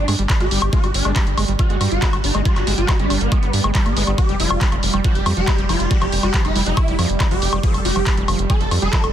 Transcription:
Already playing: synth texture G3
0.08 analog synth bass G2, acid bass G#3, open hi-hat, high woodblock
0.19 analog synth bass G1, acid bass G3, closed hi-hat
0.30 kick, clap, closed hi-hat, high woodblock
0.40 analog synth bass G1, acid bass G#3, digital synth lead G4, closed hi-hat
0.51 analog synth bass G1, acid bass G3, open hi-hat
0.62 analog synth bass G1, closed hi-hat, high woodblock
0.73 acid bass G#3, digital synth lead F#4, kick, closed hi-hat
0.84 analog synth bass G1, acid bass G3, closed hi-hat, high woodblock
0.94 analog synth bass G1, digital synth lead D4, open hi-hat
1.05 analog synth bass G1, acid bass G#3, closed hi-hat, high woodblock
1.16 acid bass G3, kick, clap, closed hi-hat
1.27 analog synth bass G1, closed hi-hat
1.38 analog synth bass G1, acid bass G#3, open hi-hat, high woodblock
1.48 analog synth bass G1, acid bass G3, closed hi-hat
1.59 digital synth lead F#4, kick, closed hi-hat, high woodblock
1.70 analog synth bass G1, acid bass G#3, closed hi-hat
1.81 analog synth bass G2, acid bass G3, open hi-hat, high woodblock
1.92 analog synth bass G1, digital synth lead F#4, closed hi-hat
2.02 acid bass G#3, kick, clap, closed hi-hat
2.13 analog synth bass G1, acid bass G3, closed hi-hat, high woodblock
2.24 analog synth bass G1, digital synth lead D#4, open hi-hat
2.35 analog synth bass G1, acid bass G#3, high woodblock
2.45 acid bass G3, digital synth lead F#4, kick, closed hi-hat
2.56 analog synth bass G1, clap, closed hi-hat, high woodblock
2.67 analog synth bass G1, acid bass G#3, open hi-hat
2.78 analog synth bass G1, acid bass G3, digital synth lead F#4, closed hi-hat
2.89 kick, clap, closed hi-hat, high woodblock
2.99 analog synth bass G1, acid bass G#3, digital synth lead D4, closed hi-hat
3.10 analog synth bass G1, acid bass G3, open hi-hat, high woodblock
3.21 analog synth bass G1, digital synth lead B3, closed hi-hat
3.32 acid bass G#3, kick, closed hi-hat, high woodblock
3.43 analog synth bass G1, acid bass G3, closed hi-hat
3.53 analog synth bass G2, open hi-hat
3.64 analog synth bass G1, acid bass G#3, closed hi-hat, high woodblock
3.75 acid bass G3, kick, clap, closed hi-hat
3.86 analog synth bass G1, digital synth lead B3, closed hi-hat, high woodblock
3.97 analog synth bass G1, acid bass G#3, open hi-hat
4.07 analog synth bass G1, acid bass G3, closed hi-hat, high woodblock
4.18 digital synth lead G4, kick, closed hi-hat, high woodblock
4.29 analog synth bass F1, acid bass G3, closed hi-hat
4.40 analog synth bass F1, acid bass F3, digital synth lead F4, open hi-hat
4.50 analog synth bass F1, closed hi-hat, high woodblock
4.61 acid bass G3, kick, clap, closed hi-hat
4.72 analog synth bass F1, acid bass F3, closed hi-hat, high woodblock
4.83 analog synth bass F1, open hi-hat
4.94 analog synth bass F1, acid bass G3, closed hi-hat, high woodblock
5.04 acid bass F3, digital synth lead G4, kick, closed hi-hat
5.15 analog synth bass F1, closed hi-hat
5.26 analog synth bass F2, acid bass G3, open hi-hat, high woodblock
5.37 analog synth bass F1, acid bass F3, digital synth lead G4, closed hi-hat
5.48 kick, clap, closed hi-hat, high woodblock
5.58 analog synth bass F1, acid bass G3, closed hi-hat
5.69 analog synth bass F1, acid bass F3, digital synth lead F4, open hi-hat, high woodblock
5.80 analog synth bass F1, closed hi-hat
5.91 acid bass G3, digital synth lead G4, kick, closed hi-hat
6.02 analog synth bass F1, acid bass F3, clap, closed hi-hat, high woodblock
6.12 analog synth bass F1, open hi-hat
6.23 analog synth bass F1, acid bass G3, digital synth lead G4, closed hi-hat, high woodblock
6.34 acid bass F3, kick, clap, closed hi-hat
6.45 analog synth bass F1, digital synth lead E4, closed hi-hat, high woodblock
6.56 analog synth bass F1, acid bass G3, open hi-hat
6.66 analog synth bass F1, acid bass F3, digital synth lead E4, closed hi-hat
6.77 kick, closed hi-hat, high woodblock
6.88 analog synth bass F1, acid bass G3, closed hi-hat
6.99 analog synth bass F2, acid bass F3, open hi-hat, high woodblock
7.09 analog synth bass F1, closed hi-hat
7.20 acid bass G3, kick, clap, closed hi-hat, high woodblock
7.31 analog synth bass F1, acid bass F3, digital synth lead G4, closed hi-hat
7.42 analog synth bass F1, open hi-hat
7.53 analog synth bass F1, acid bass G3, closed hi-hat, high woodblock
7.63 acid bass F3, digital synth lead A4, kick, closed hi-hat
7.74 analog synth bass F1, closed hi-hat, high woodblock
7.85 analog synth bass F1, acid bass G3, digital synth lead G4, open hi-hat
7.96 analog synth bass F1, acid bass F3, closed hi-hat, high woodblock
8.07 kick, clap, closed hi-hat
8.17 analog synth bass F1, acid bass G3, closed hi-hat
8.28 analog synth bass F1, acid bass F3, open hi-hat, high woodblock
8.39 analog synth bass F1, closed hi-hat
8.50 acid bass G3, digital synth lead A4, kick, closed hi-hat, high woodblock
8.61 analog synth bass F1, acid bass F3, closed hi-hat
8.71 analog synth bass F2, open hi-hat, high woodblock
8.82 analog synth bass F1, acid bass G3, digital synth lead A4, closed hi-hat
8.93 acid bass F3, kick, clap, closed hi-hat
9.04 analog synth bass F1, closed hi-hat, high woodblock

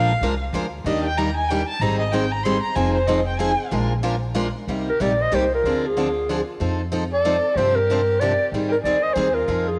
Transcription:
Already playing: upright bass A#1, steel-string acoustic guitar F3 G#3 D4 F4 A#4, violin F5
0.21 upright bass C2, steel-string acoustic guitar F3 G#3 D4 F4 A#4
0.53 upright bass D2, steel-string acoustic guitar F3 G#3 D4 F4 A#4
0.84 upright bass D#2, steel-string acoustic guitar D#3 G3 A#3 D4 G4, violin D#5
1.05 violin G5
1.17 steel-string acoustic guitar D#3 G3 A#3 D4 G4, violin A#5
1.37 violin G#5
1.49 steel-string acoustic guitar D#3 G3 A#3 D4 G4, violin G5
1.69 violin A5
1.80 upright bass G#1, steel-string acoustic guitar D#3 G3 C4 D#4 G#4, violin A#5
2.00 violin D#5
2.12 steel-string acoustic guitar D#3 G3 C4 D#4 G#4, violin G5
2.31 violin A#5
2.43 steel-string acoustic guitar D#3 G3 C4 D#4 G#4, violin C6
2.63 violin A#5
2.75 upright bass F1, steel-string acoustic guitar F3 C4 D#4 G#4, violin G#5
2.95 violin C5
3.07 steel-string acoustic guitar F3 C4 D#4 G#4, violin D#5
3.27 violin G5
3.39 steel-string acoustic guitar F3 C4 D#4 G#4, violin G#5
3.71 upright bass A#1, steel-string acoustic guitar F3 G#3 D4 F4 A#4
4.03 steel-string acoustic guitar F3 G#3 D4 F4 A#4
4.34 steel-string acoustic guitar F3 G#3 D4 F4 A#4
4.68 upright bass C2, steel-string acoustic guitar C3 G3 A#3 D#4 G4
4.88 violin G4, clarinet A#4
5.00 upright bass A#1, steel-string acoustic guitar C3 G3 A#3 D#4 G4, violin A#4, clarinet D5
5.20 violin C5, clarinet D#5
5.32 upright bass C2, steel-string acoustic guitar C3 G3 A#3 D#4 G4, violin G4, clarinet C5
5.52 violin F4, clarinet A#4
5.64 upright bass D2, steel-string acoustic guitar D3 F3 C4 D4 G#4
5.84 violin F4, clarinet G#4
5.97 steel-string acoustic guitar D3 F3 C4 D4 G#4
6.29 steel-string acoustic guitar D3 F3 C4 D4 G#4
6.60 upright bass F2, steel-string acoustic guitar F3 C4 D#4 A4
6.92 steel-string acoustic guitar F3 C4 D#4 A4
7.11 violin A4, clarinet D5
7.25 steel-string acoustic guitar F3 C4 D#4 A4
7.55 upright bass G2, steel-string acoustic guitar C3 F3 C4 D4 G4, violin G4, clarinet C5
7.74 violin G4, clarinet A#4
7.90 steel-string acoustic guitar C3 F3 C4 D4 G4
8.17 steel-string acoustic guitar C3 F3, violin G4, clarinet D5
8.22 steel-string acoustic guitar C4 D4 G4
8.52 upright bass G#2, steel-string acoustic guitar D#3 G3 C4 D#4 G#4
8.69 violin G4, clarinet A#4
8.82 upright bass D2, steel-string acoustic guitar D#3, violin G#4, clarinet D5
8.86 steel-string acoustic guitar G3 C4 D#4 G#4
9.01 violin C5, clarinet D#5
9.13 upright bass D#2, steel-string acoustic guitar D#3 G3 G#4, violin G#4, clarinet C5
9.17 steel-string acoustic guitar C4 D#4
9.33 violin F4, clarinet A#4
9.48 upright bass F2, steel-string acoustic guitar F3 C4 D#4 G#4
9.66 violin F4, clarinet G#4

